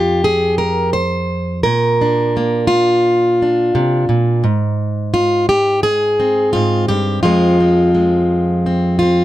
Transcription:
0.00 1.65 F2 medium
0.00 0.24 F4 medium
0.00 0.94 G4 medium
0.24 0.58 G#4 medium
0.58 0.93 A#4 medium
0.93 1.63 C5 medium
1.63 3.74 A#2 medium
1.63 2.67 A#4 medium
2.01 3.40 D4 soft
2.37 4.41 A#3 soft
2.67 4.43 F4 medium
3.42 4.41 D4 soft
3.75 4.09 C3 medium
4.09 4.44 A#2 medium
4.44 6.53 G#2 medium
5.14 5.49 F4 medium
5.49 5.83 G4 medium
5.83 6.52 G#4 loud
6.20 7.25 C4 soft
6.53 6.89 G#2 medium
6.53 6.88 F4 medium
6.88 7.23 G2 medium
6.88 7.22 G4 medium
7.23 9.24 F2 medium
7.23 9.24 F3 soft
7.23 7.93 G#3 soft
7.23 7.59 C4 soft
7.23 8.98 F4 medium
7.60 8.65 C4 soft
7.95 9.24 G#3 soft
8.66 9.01 C4 soft
8.99 9.24 C4 soft
8.99 9.24 F4 medium

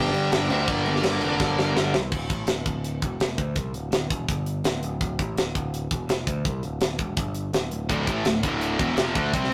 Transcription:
0.00 0.12 G1 loud
0.00 0.47 G2 medium
0.00 0.48 G2 loud
0.00 0.49 D3 medium
0.00 0.49 D3 loud
0.00 0.50 G3 loud
0.00 0.46 D4 loud
0.00 0.51 G5 loud
0.13 0.29 G2 medium
0.13 crash medium
0.31 0.47 G1 medium
0.31 snare loud
0.31 crash medium
0.49 0.65 D2 loud
0.49 1.02 G2 loud
0.49 1.03 D3 medium
0.49 1.04 G3 loud
0.49 0.68 C4 medium
0.49 0.69 E5 loud
0.49 crash medium
0.67 0.84 G1 loud
0.67 1.76 A#3 medium
0.67 1.76 D5 medium
0.67 kick loud
0.67 crash medium
0.86 1.02 G1 medium
0.86 crash medium
0.96 snare soft
1.03 1.19 G1 loud
1.03 1.92 G2 medium
1.03 1.94 D3 medium
1.03 snare loud
1.03 crash medium
1.07 1.94 G3 medium
1.21 1.37 F1 medium
1.21 crash medium
1.40 1.56 G1 loud
1.40 kick loud
1.40 snare medium
1.57 1.74 G1 medium
1.57 snare medium
1.75 1.91 G1 medium
1.75 snare loud
1.94 2.10 C2 medium
1.94 snare loud
2.12 2.28 D1 medium
2.12 kick medium
2.12 crash medium
2.30 2.47 A1 medium
2.30 kick medium
2.30 closed hi-hat medium
2.47 2.65 D1 medium
2.47 snare loud
2.47 closed hi-hat medium
2.65 2.99 D1 medium
2.65 kick medium
2.65 closed hi-hat medium
2.84 closed hi-hat medium
3.02 3.19 E1 medium
3.02 kick loud
3.02 closed hi-hat medium
3.20 3.37 F1 medium
3.20 snare loud
3.20 closed hi-hat medium
3.38 3.55 D2 medium
3.38 kick loud
3.38 closed hi-hat medium
3.55 3.72 C2 medium
3.55 kick medium
3.55 closed hi-hat medium
3.73 3.90 D1 medium
3.73 closed hi-hat medium
3.91 4.08 D1 medium
3.91 snare loud
3.91 closed hi-hat medium
4.10 4.27 E1 medium
4.10 kick loud
4.10 closed hi-hat medium
4.28 4.62 G1 medium
4.28 kick loud
4.28 closed hi-hat medium
4.46 closed hi-hat medium
4.64 4.81 D1 medium
4.64 snare loud
4.64 closed hi-hat medium
4.82 4.99 D1 medium
4.82 closed hi-hat medium
5.00 5.17 D1 medium
5.00 kick medium
5.00 closed hi-hat medium
5.19 5.36 A1 medium
5.19 kick loud
5.19 closed hi-hat medium
5.36 5.53 D1 medium
5.36 snare loud
5.36 closed hi-hat medium
5.55 5.88 D1 medium
5.55 kick medium
5.55 closed hi-hat medium
5.74 closed hi-hat medium
5.91 6.07 E1 medium
5.91 kick loud
5.91 closed hi-hat medium
6.08 6.25 F1 medium
6.08 snare loud
6.08 closed hi-hat medium
6.27 6.44 D2 medium
6.27 kick loud
6.27 closed hi-hat medium
6.45 6.61 C2 medium
6.45 kick medium
6.45 closed hi-hat medium
6.63 6.79 D1 medium
6.63 closed hi-hat medium
6.81 6.97 D1 medium
6.81 snare loud
6.81 closed hi-hat medium
6.99 7.15 E1 medium
6.99 kick loud
6.99 closed hi-hat medium
7.17 7.50 G1 medium
7.17 kick loud
7.17 closed hi-hat medium
7.34 closed hi-hat medium
7.53 7.70 D1 medium
7.53 snare loud
7.53 closed hi-hat medium
7.71 7.88 D1 medium
7.71 closed hi-hat medium
7.89 8.06 D1 medium
7.89 8.06 D2 medium
7.89 8.05 A2 medium
7.89 8.07 D3 medium
7.89 kick medium
7.89 closed hi-hat medium
8.07 8.24 A1 medium
8.07 8.24 A2 medium
8.07 8.24 E3 medium
8.07 8.25 A3 loud
8.07 kick medium
8.07 closed hi-hat medium
8.25 8.42 D1 medium
8.25 8.39 D2 medium
8.25 8.40 A2 medium
8.25 snare loud
8.25 closed hi-hat medium
8.43 8.77 D1 medium
8.43 8.78 D2 medium
8.43 8.79 A2 medium
8.43 8.79 D3 medium
8.43 kick loud
8.43 closed hi-hat medium
8.61 closed hi-hat medium
8.79 8.96 E1 medium
8.79 8.96 E2 medium
8.79 8.97 B2 medium
8.79 8.97 E3 medium
8.79 kick loud
8.79 closed hi-hat medium
8.96 9.14 F1 medium
8.96 9.14 F2 medium
8.96 9.15 C3 loud
8.96 9.15 F3 loud
8.96 snare loud
8.96 closed hi-hat medium
9.15 9.32 D2 medium
9.15 9.32 D3 medium
9.15 9.33 A3 medium
9.15 9.33 D4 loud
9.15 kick loud
9.15 closed hi-hat medium
9.33 9.50 C2 medium
9.33 9.50 C3 medium
9.33 9.51 G3 medium
9.33 9.51 C4 loud
9.33 kick loud
9.33 closed hi-hat medium
9.44 snare soft
9.51 9.54 D2 medium

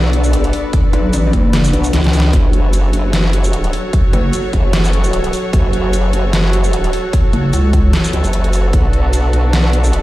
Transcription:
0.00 0.52 B1 loud
0.00 2.29 B3 medium
0.00 2.33 D4 medium
0.00 2.29 F#4 medium
0.00 2.29 A4 medium
0.00 3.81 B4 medium
0.00 2.29 D5 medium
0.00 2.87 B5 medium
0.13 closed hi-hat medium
0.24 shaker medium
0.33 closed hi-hat medium
0.44 closed hi-hat soft
0.53 open hi-hat medium
0.73 kick loud
0.73 closed hi-hat medium
0.93 1.12 B1 loud
0.93 closed hi-hat medium
1.13 1.32 A1 loud
1.13 closed hi-hat medium
1.13 shaker medium
1.33 1.72 F#1 loud
1.33 kick medium
1.33 closed hi-hat medium
1.53 snare loud
1.53 closed hi-hat medium
1.64 shaker medium
1.73 1.92 B1 loud
1.73 closed hi-hat medium
1.84 closed hi-hat soft
1.84 shaker medium
1.93 2.32 C#2 loud
1.93 snare medium
1.93 closed hi-hat medium
2.04 snare medium
2.04 closed hi-hat soft
2.13 open hi-hat medium
2.13 shaker medium
2.20 snare medium
2.33 2.92 F#1 loud
2.33 8.69 F#3 medium
2.33 10.02 F#4 medium
2.33 9.28 F#4 medium
2.33 10.02 A4 medium
2.33 8.69 C#5 medium
2.33 kick loud
2.33 closed hi-hat medium
2.53 closed hi-hat medium
2.58 9.63 C#5 loud
2.64 10.02 A5 medium
2.73 closed hi-hat medium
2.73 shaker medium
2.93 3.72 F#1 loud
2.93 closed hi-hat medium
3.13 snare loud
3.13 closed hi-hat medium
3.33 closed hi-hat medium
3.44 shaker medium
3.53 closed hi-hat medium
3.64 closed hi-hat soft
3.73 open hi-hat medium
3.93 kick loud
3.93 closed hi-hat medium
4.13 4.32 F#1 loud
4.13 closed hi-hat medium
4.33 closed hi-hat medium
4.33 shaker medium
4.53 5.32 F#1 loud
4.53 kick medium
4.53 closed hi-hat medium
4.73 snare loud
4.73 closed hi-hat medium
4.84 shaker medium
4.93 closed hi-hat medium
5.04 closed hi-hat soft
5.04 shaker medium
5.13 closed hi-hat medium
5.24 closed hi-hat soft
5.33 open hi-hat medium
5.33 shaker soft
5.53 6.12 F#1 loud
5.53 kick loud
5.53 closed hi-hat medium
5.73 closed hi-hat medium
5.93 closed hi-hat medium
5.93 shaker medium
6.13 6.92 F#1 loud
6.13 closed hi-hat medium
6.33 snare loud
6.33 closed hi-hat medium
6.53 closed hi-hat medium
6.64 shaker medium
6.73 closed hi-hat medium
6.84 closed hi-hat soft
6.93 open hi-hat medium
7.13 kick loud
7.13 closed hi-hat medium
7.33 7.52 F#1 loud
7.33 closed hi-hat medium
7.53 7.92 C#2 loud
7.53 closed hi-hat medium
7.53 shaker medium
7.73 kick medium
7.73 closed hi-hat medium
7.93 snare loud
7.93 closed hi-hat medium
8.04 shaker medium
8.13 8.22 C#2 medium
8.13 closed hi-hat medium
8.24 8.72 F#1 loud
8.24 closed hi-hat soft
8.24 shaker medium
8.33 closed hi-hat medium
8.44 closed hi-hat soft
8.53 open hi-hat medium
8.53 shaker soft
8.73 9.32 B1 loud
8.73 10.02 B3 medium
8.73 10.02 D4 medium
8.73 kick loud
8.73 closed hi-hat medium
8.83 10.02 B4 medium
8.93 closed hi-hat medium
9.13 closed hi-hat medium
9.13 shaker medium
9.33 10.02 B1 loud
9.33 closed hi-hat medium
9.53 snare loud
9.53 closed hi-hat medium
9.73 closed hi-hat medium
9.84 shaker medium
9.93 closed hi-hat medium

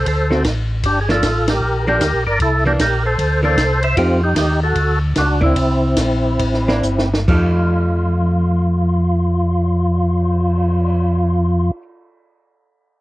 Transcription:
0.06 0.44 D2 medium
0.06 0.43 A4 medium
0.06 0.43 C5 medium
0.06 kick soft
0.06 ride medium
0.30 0.43 D3 medium
0.30 0.43 A3 medium
0.30 0.44 C4 medium
0.30 0.44 F#4 medium
0.30 snare soft
0.44 0.83 A1 medium
0.44 kick soft
0.44 snare medium
0.44 hi-hat pedal medium
0.44 ride medium
0.83 1.21 G1 medium
0.83 1.00 D4 medium
0.83 1.00 G4 medium
0.83 kick soft
0.83 ride medium
1.01 1.09 G#4 medium
1.09 1.22 F3 medium
1.09 1.22 A#3 medium
1.09 1.22 D4 medium
1.09 1.46 F4 medium
1.09 1.50 A4 medium
1.09 snare medium
1.22 1.60 A1 medium
1.22 kick soft
1.22 snare medium
1.22 hi-hat pedal medium
1.22 ride medium
1.47 1.85 G4 medium
1.47 1.87 A#4 loud
1.47 snare medium
1.47 ride medium
1.60 1.99 A#1 medium
1.87 2.00 F3 medium
1.87 2.00 A#3 medium
1.87 2.00 D4 medium
1.87 2.24 G4 medium
1.87 2.24 A#4 loud
2.01 2.13 D2 medium
2.01 kick soft
2.01 snare medium
2.01 hi-hat pedal medium
2.01 ride medium
2.13 2.26 A#1 soft
2.27 2.39 G1 medium
2.27 2.39 A#4 medium
2.27 2.39 D5 medium
2.40 2.78 C2 medium
2.40 2.64 E4 medium
2.40 2.64 A4 medium
2.40 kick soft
2.40 ride medium
2.65 2.78 E3 medium
2.65 2.78 A#3 medium
2.65 2.78 D4 medium
2.65 2.73 G4 medium
2.65 2.73 A#4 medium
2.79 3.17 A#1 medium
2.79 3.03 G4 medium
2.79 3.06 A#4 medium
2.79 kick soft
2.79 snare medium
2.79 hi-hat pedal medium
2.79 ride medium
3.06 3.41 A4 medium
3.06 3.41 C5 medium
3.18 3.56 D2 medium
3.18 kick soft
3.18 ride medium
3.43 3.55 E3 medium
3.43 3.56 A#3 medium
3.43 3.56 D4 medium
3.43 3.80 A4 medium
3.43 3.83 C5 medium
3.57 3.95 C2 medium
3.57 kick soft
3.57 snare medium
3.57 hi-hat pedal medium
3.57 ride medium
3.83 3.96 C5 medium
3.83 3.97 E5 medium
3.83 ride soft
3.97 4.34 F2 medium
3.97 4.19 F3 medium
3.97 4.19 A3 medium
3.97 4.21 C4 medium
3.97 4.19 D#4 medium
3.97 4.23 F4 medium
3.97 4.19 G4 medium
3.97 kick soft
3.97 ride medium
4.24 4.36 D#4 medium
4.24 4.35 G4 medium
4.35 4.73 D#2 medium
4.35 4.60 D#4 medium
4.35 4.60 G4 loud
4.35 kick soft
4.35 snare medium
4.35 hi-hat pedal medium
4.35 ride medium
4.63 4.99 F#4 medium
4.63 4.99 A4 medium
4.75 5.13 D2 medium
4.75 kick soft
4.75 ride medium
5.15 5.54 C#2 medium
5.15 5.41 D4 medium
5.15 5.40 F#4 medium
5.15 kick soft
5.15 snare medium
5.15 hi-hat pedal soft
5.15 ride medium
5.41 5.54 A#3 medium
5.41 5.54 D4 medium
5.41 5.54 E4 medium
5.41 7.09 E4 medium
5.41 kick soft
5.45 7.10 C4 medium
5.56 5.96 C2 medium
5.56 kick soft
5.56 ride medium
5.97 6.38 A#1 medium
5.97 kick soft
5.97 snare medium
5.97 hi-hat pedal medium
5.97 ride medium
6.39 6.82 A1 medium
6.39 kick soft
6.39 ride medium
6.54 snare soft
6.68 6.82 A#3 medium
6.68 6.82 D4 medium
6.68 6.83 E4 medium
6.68 snare soft
6.83 7.27 G1 medium
6.83 hi-hat pedal medium
6.99 snare medium
7.14 snare medium
7.28 11.71 F2 medium
7.28 11.81 F3 medium
7.28 11.82 A3 medium
7.28 11.83 D#4 medium
7.28 11.71 F4 medium
7.28 11.83 G4 medium
7.28 kick medium
7.28 crash medium
7.58 cymbal swell soft

